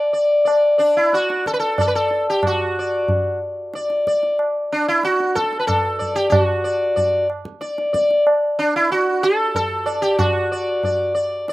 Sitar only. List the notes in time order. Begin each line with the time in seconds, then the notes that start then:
Already playing: D5
0.13 D5
0.45 D5
0.78 D4 D5
0.97 E4
1.14 F#4 D5
1.47 A4
1.53 B4
1.59 A4
1.78 A4 D5
1.88 B4
1.95 A4
2.30 G4
2.47 F#4
2.79 D5
3.75 D5
4.07 D5
4.72 D4
4.88 E4
5.05 F#4
5.35 A4
5.59 B4
5.67 A4
5.99 D5
6.15 G4
6.30 G4
6.41 F#4
6.64 D5
6.96 D5
7.61 D5
7.93 D5
8.59 D4
8.76 E4
8.92 F#4
9.23 A4
9.56 A4
9.86 D5
10.02 G4
10.18 F#4
10.52 D5
10.84 D5
11.15 D5
11.49 D5